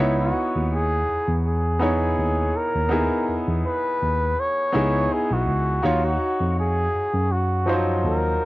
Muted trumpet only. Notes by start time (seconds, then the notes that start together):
0.00 E4
0.19 F#4
0.73 G#4
1.47 G#4
2.56 A#4
3.66 B4
4.40 C#5
5.13 G#4
5.33 F#4
5.86 F4
6.05 F#4
6.60 G#4
7.32 F#4
8.05 A#4